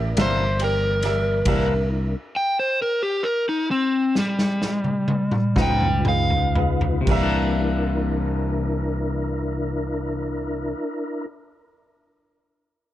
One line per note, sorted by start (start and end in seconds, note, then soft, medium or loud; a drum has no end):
0.00 0.13 A1 medium
0.00 1.42 E3 medium
0.00 1.42 A#4 medium
0.00 1.42 D5 medium
0.16 1.42 G1 medium
0.16 0.44 C3 medium
0.16 0.43 E3 medium
0.16 0.43 A#3 medium
0.16 0.43 D4 medium
0.16 0.49 G4 medium
0.16 0.49 A#4 medium
0.16 0.49 D5 medium
0.16 0.50 E5 medium
0.16 snare loud
0.16 ride medium
0.21 0.61 C5 medium
0.59 0.92 G4 medium
0.59 0.92 A#4 soft
0.59 0.93 D5 medium
0.59 0.93 G5 medium
0.59 ride medium
0.64 1.88 A#4 medium
1.03 1.36 G4 medium
1.03 1.36 A#4 medium
1.03 1.36 D5 medium
1.03 1.37 E5 medium
1.03 snare soft
1.03 ride medium
1.45 2.14 C2 medium
1.45 1.72 C3 medium
1.45 1.73 E3 medium
1.45 1.73 A#3 medium
1.45 1.73 D4 medium
1.45 2.16 D4 medium
1.45 2.16 E4 medium
1.45 1.79 G4 medium
1.45 2.16 A#4 medium
1.45 1.79 A#4 medium
1.45 1.79 D5 medium
1.45 1.80 E5 medium
1.45 kick loud
1.45 crash medium
1.45 ride medium
2.36 2.57 G5 loud
2.59 2.79 C5 medium
2.82 3.02 A#4 medium
3.03 3.24 G4 loud
3.23 3.45 A#4 medium
3.49 3.70 D#4 loud
3.71 4.15 C4 loud
4.15 6.05 G3 loud
4.15 snare medium
4.39 snare medium
4.62 snare medium
4.84 high tom medium
5.08 high tom medium
5.31 mid tom medium
5.56 7.04 C#2 medium
5.56 5.88 C#3 soft
5.56 5.87 F3 medium
5.56 5.87 B3 medium
5.56 7.06 D#4 medium
5.56 5.87 D#4 medium
5.56 7.06 F4 medium
5.56 5.94 F4 medium
5.56 7.06 B4 medium
5.56 5.94 B4 medium
5.56 5.94 D#5 medium
5.56 5.94 F5 medium
5.56 kick medium
5.56 snare loud
5.56 mid tom loud
5.62 6.07 G5 loud
5.80 mid tom medium
6.05 6.43 G#4 medium
6.05 6.44 B4 medium
6.05 6.44 D#5 medium
6.05 7.06 F5 loud
6.05 6.44 G5 medium
6.05 mid tom loud
6.30 floor tom medium
6.55 6.95 G#4 medium
6.55 6.95 B4 medium
6.55 6.95 D#5 medium
6.55 6.96 F5 medium
6.55 floor tom loud
6.81 floor tom loud
7.01 10.71 C3 medium
7.01 10.70 G4 medium
7.07 10.73 C2 medium
7.07 10.80 E3 medium
7.07 7.58 D4 medium
7.07 7.59 E4 medium
7.07 10.72 A#4 medium
7.07 7.59 A#4 medium
7.07 10.74 D5 medium
7.07 kick loud
7.07 crash medium
7.11 10.77 E5 medium
7.16 10.86 A#3 medium
7.23 10.93 D4 loud
7.59 11.25 D4 medium
7.59 11.26 E4 medium
7.59 11.26 A#4 medium